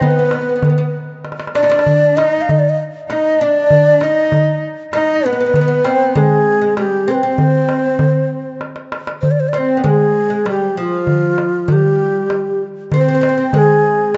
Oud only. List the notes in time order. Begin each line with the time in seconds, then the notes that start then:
0.02 B3
0.11 B3
0.19 B3
0.25 B3
0.32 B3
0.41 B3
0.49 B3
0.56 B3
0.64 B3
0.70 B3
0.78 B3
1.55 D4
1.63 D#4
1.69 D4
2.17 D#4
3.10 D#4
3.41 D4
4.00 D#4
4.93 D#4
5.26 B3
5.33 B3
5.40 B3
5.46 B3
5.56 B3
5.61 B3
5.68 B3
5.84 C4
6.15 G#3
6.61 G#3
6.77 G3
7.08 C4
7.23 C4
9.54 C4
9.77 B3
9.84 G#3
10.30 G#3
10.46 G3
10.77 F3
11.68 G3
12.94 C4
13.01 C4
13.08 C4
13.15 C4
13.21 C4
13.29 C4
13.38 C4
13.54 G#3